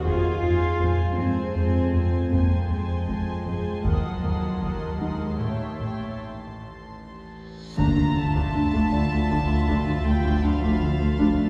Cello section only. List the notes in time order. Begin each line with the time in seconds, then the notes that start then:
0.05 F4
1.18 C4
2.32 A#3
2.70 G#3
3.83 F#3
5.00 G#3
5.41 A3
7.79 A#3
8.17 A3
10.06 G3
10.43 F3